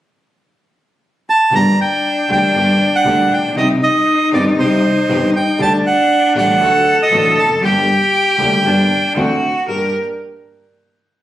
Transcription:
1.30 1.54 A5 medium
1.51 1.73 G1 medium
1.51 1.74 G1 medium
1.51 1.74 G2 medium
1.51 1.74 D3 medium
1.51 1.74 G3 medium
1.51 1.73 A#3 medium
1.51 1.74 A#3 medium
1.51 1.74 D4 medium
1.51 3.57 D4 medium
1.51 1.74 G4 medium
1.55 1.80 A#5 medium
1.81 2.31 G5 medium
2.28 2.50 D2 medium
2.28 2.50 D3 medium
2.28 2.50 G3 medium
2.28 2.50 A#3 medium
2.28 2.50 D4 medium
2.28 2.50 G4 medium
2.32 2.96 G5 medium
2.54 2.75 G1 medium
2.54 2.76 G1 medium
2.54 2.76 G2 medium
2.54 2.75 D3 medium
2.54 2.76 G3 soft
2.54 2.76 A#3 medium
2.54 2.76 D4 medium
2.54 2.76 G4 medium
2.96 3.33 F#5 medium
3.05 3.26 D2 medium
3.05 3.27 D2 medium
3.05 3.27 D3 medium
3.05 3.27 G3 medium
3.05 3.27 A#3 medium
3.05 3.27 D4 medium
3.05 3.27 G4 medium
3.31 3.56 A#1 soft
3.31 3.56 G5 medium
3.37 3.43 A1 soft
3.45 3.50 A#1 medium
3.50 3.56 B1 medium
3.55 3.78 C2 medium
3.55 3.77 C3 medium
3.55 3.77 D#3 medium
3.55 3.77 G3 medium
3.55 3.77 C4 medium
3.55 5.60 D#4 medium
3.55 3.77 D#4 medium
3.55 3.78 G4 medium
3.55 3.69 D#5 medium
3.83 4.30 D#5 medium
4.32 4.54 G1 medium
4.32 4.54 G2 medium
4.32 4.54 D#3 medium
4.32 4.54 G3 medium
4.32 4.54 C4 medium
4.32 4.54 D#4 medium
4.32 4.54 G4 medium
4.32 4.45 D5 medium
4.58 4.79 C2 medium
4.58 4.79 C3 medium
4.58 4.79 D#3 medium
4.58 4.79 G3 medium
4.58 4.79 C4 medium
4.58 4.79 D#4 medium
4.58 4.79 G4 medium
4.58 4.80 G4 medium
4.58 5.31 C5 medium
5.08 5.30 G1 medium
5.08 5.30 G2 medium
5.08 5.30 D#3 medium
5.08 5.30 G3 medium
5.08 5.30 C4 medium
5.08 5.30 D#4 medium
5.08 5.30 G4 medium
5.36 5.61 G5 medium
5.59 5.80 D2 medium
5.59 5.81 D2 medium
5.59 5.80 D3 medium
5.59 5.80 G3 medium
5.59 5.80 A3 medium
5.59 5.81 A3 medium
5.59 6.63 D4 medium
5.59 5.81 D4 medium
5.59 5.81 G4 medium
5.59 5.73 A5 medium
5.87 6.33 F#5 medium
6.35 6.57 A1 medium
6.35 6.57 A2 medium
6.35 6.57 D3 medium
6.35 6.57 G3 medium
6.35 6.57 A3 medium
6.35 6.57 D4 medium
6.35 6.57 G4 medium
6.35 6.96 F#5 medium
6.61 6.82 D2 medium
6.61 6.82 D3 medium
6.61 6.82 F#3 medium
6.61 6.82 A3 medium
6.61 6.82 D4 medium
6.61 6.82 F#4 medium
6.61 6.83 F#4 medium
6.61 7.64 A4 medium
7.02 7.40 D#5 medium
7.11 7.32 A1 medium
7.11 7.33 A1 medium
7.11 7.33 A2 medium
7.11 7.33 D3 medium
7.11 7.33 F#3 medium
7.11 7.33 A3 medium
7.11 7.33 D4 medium
7.11 7.33 F#4 medium
7.36 7.61 F1 soft
7.36 7.50 A5 medium
7.43 7.49 E2 soft
7.48 7.55 F2 soft
7.54 7.61 F#2 medium
7.61 7.83 G1 medium
7.61 7.83 G2 medium
7.61 7.83 D3 medium
7.61 7.83 G3 medium
7.61 7.83 A#3 medium
7.61 7.84 A#3 medium
7.61 7.84 D4 medium
7.61 7.83 G4 medium
7.61 8.64 G4 medium
7.61 7.84 G4 medium
7.61 9.13 G5 medium
8.38 8.60 D2 medium
8.38 8.60 D3 medium
8.38 8.60 G3 medium
8.38 8.60 A#3 medium
8.38 8.60 D4 medium
8.38 8.60 G4 medium
8.38 8.61 G4 medium
8.64 8.86 G1 medium
8.64 8.86 G2 medium
8.64 8.86 D3 medium
8.64 8.86 G3 medium
8.64 8.86 A#3 medium
8.64 8.86 D4 medium
8.64 9.18 D4 medium
8.64 8.86 G4 medium
8.64 8.87 G4 medium
9.15 9.37 D2 medium
9.15 9.38 D2 medium
9.15 9.38 D3 medium
9.15 9.38 A3 medium
9.15 9.38 C4 medium
9.15 9.38 D4 medium
9.15 9.67 F#4 medium
9.15 9.38 F#4 medium
9.67 9.89 G1 soft
9.67 9.89 G2 soft
9.67 9.89 A#3 soft
9.67 9.89 D4 soft
9.67 9.89 G4 soft
9.67 9.90 G4 medium
9.67 9.91 A#4 medium

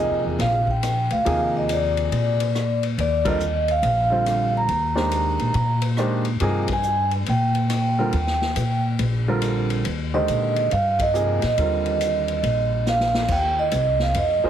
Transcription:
0.00 0.62 C3 soft
0.00 0.62 F3 soft
0.00 0.63 A#3 soft
0.00 0.63 D#4 soft
0.00 0.63 G#4 medium
0.00 0.22 D#5 medium
0.10 0.24 F2 medium
0.24 0.38 E2 medium
0.39 1.06 A#1 medium
0.39 0.67 F5 medium
0.39 snare soft
0.39 ride soft
0.67 1.10 G5 medium
0.67 kick soft
0.83 cross-stick medium
0.83 hi-hat pedal medium
0.83 ride medium
1.10 1.25 D2 medium
1.10 1.52 F5 medium
1.10 ride soft
1.25 2.08 D#2 medium
1.25 2.45 C3 medium
1.25 2.46 F3 medium
1.25 2.46 A#3 medium
1.25 2.46 D#4 medium
1.25 2.46 G#4 medium
1.25 ride medium
1.57 1.71 D#5 medium
1.69 2.81 D5 medium
1.69 hi-hat pedal soft
1.69 ride medium
1.97 ride soft
2.12 2.94 A#2 medium
2.12 ride soft
2.40 ride medium
2.55 cross-stick medium
2.55 hi-hat pedal medium
2.83 ride soft
2.98 3.80 D#2 medium
2.98 3.28 D5 medium
2.98 ride soft
3.25 3.39 D3 medium
3.25 3.39 G3 medium
3.25 3.39 C4 medium
3.25 3.40 F4 medium
3.25 3.40 A#4 medium
3.25 3.71 D#5 medium
3.25 kick medium
3.25 ride medium
3.40 hi-hat pedal medium
3.68 3.83 F5 medium
3.68 ride soft
3.82 4.65 A#1 medium
3.82 4.51 F5 medium
3.82 ride medium
4.10 4.66 D3 medium
4.10 4.67 G3 medium
4.10 4.67 C4 medium
4.10 4.67 F4 medium
4.10 4.67 C5 medium
4.26 cross-stick medium
4.26 hi-hat pedal medium
4.26 ride medium
4.57 5.81 A#5 medium
4.68 5.36 D#2 medium
4.68 ride soft
4.95 5.52 D#3 medium
4.95 5.52 G#3 medium
4.95 5.52 D4 medium
4.95 5.52 G4 medium
4.95 5.52 C5 medium
4.95 snare soft
5.11 hi-hat pedal medium
5.11 ride medium
5.39 5.54 A#2 medium
5.39 ride soft
5.54 6.37 A#2 medium
5.54 ride soft
5.82 ride medium
5.97 6.23 D#3 medium
5.97 6.24 G#3 medium
5.97 6.24 D4 medium
5.97 6.24 G4 medium
5.97 6.24 C5 medium
5.97 cross-stick medium
5.97 hi-hat pedal soft
6.25 ride soft
6.40 7.23 G2 medium
6.40 6.66 C3 medium
6.40 6.67 F3 medium
6.40 6.67 A#3 medium
6.40 6.67 D#4 medium
6.40 6.67 G#4 medium
6.40 ride medium
6.68 kick medium
6.68 ride medium
6.73 7.11 G#5 loud
6.83 hi-hat pedal soft
7.11 ride soft
7.26 8.10 A#2 medium
7.26 7.99 G5 medium
7.26 ride medium
7.55 ride soft
7.70 cross-stick medium
7.70 hi-hat pedal soft
7.70 ride medium
7.99 8.12 D3 medium
7.99 8.12 G3 soft
7.99 8.12 C4 soft
7.99 8.13 F4 medium
7.99 8.13 A#4 medium
7.99 8.81 G5 medium
8.13 8.53 D#2 medium
8.13 ride soft
8.27 snare soft
8.42 snare soft
8.56 8.96 A#2 medium
8.56 hi-hat pedal medium
8.56 ride medium
8.99 9.81 A#1 medium
8.99 ride medium
9.28 9.83 D3 medium
9.28 9.83 G3 medium
9.28 9.83 C4 medium
9.28 9.84 F4 medium
9.28 9.84 A#4 medium
9.42 cross-stick medium
9.42 hi-hat pedal medium
9.42 ride medium
9.70 ride soft
9.85 10.26 D#2 medium
9.85 ride medium
10.14 10.69 D3 medium
10.14 10.69 D#3 medium
10.14 10.69 G#3 medium
10.14 10.69 G4 medium
10.14 10.70 C5 medium
10.14 10.68 D#5 medium
10.28 10.69 A#2 medium
10.28 hi-hat pedal soft
10.28 ride medium
10.56 ride soft
10.71 11.39 G2 medium
10.71 10.98 F5 loud
10.71 ride soft
10.99 11.41 D#5 medium
10.99 kick medium
10.99 ride medium
11.14 11.39 C3 medium
11.14 11.39 F3 medium
11.14 11.40 A#3 medium
11.14 11.40 D#4 soft
11.14 11.40 G#4 medium
11.14 hi-hat pedal medium
11.42 11.57 A#2 medium
11.42 12.84 D#5 medium
11.42 snare soft
11.42 ride soft
11.57 12.40 D#2 medium
11.57 12.78 D3 medium
11.57 12.78 G3 soft
11.57 12.79 C4 soft
11.57 12.79 F4 soft
11.57 12.79 A#4 medium
11.57 ride medium
11.86 ride soft
12.01 hi-hat pedal medium
12.01 ride medium
12.28 ride soft
12.43 13.26 A#1 medium
12.43 ride soft
12.86 13.32 F5 medium
12.86 snare soft
12.86 hi-hat pedal soft
13.00 snare soft
13.14 snare medium
13.28 13.71 D#2 medium
13.28 13.60 G5 medium
13.28 kick medium
13.28 crash medium
13.59 13.99 D#5 medium
13.71 14.14 C2 medium
13.71 hi-hat pedal soft
13.71 ride medium
13.99 14.17 F5 medium
13.99 snare soft
14.14 14.41 F2 medium
14.14 14.50 D#5 medium
14.14 ride medium
14.43 14.50 F3 medium
14.43 14.50 A#3 medium
14.43 14.50 D#4 medium
14.43 14.50 G#4 medium
14.43 14.50 C5 medium
14.43 muted upright bass stroke soft

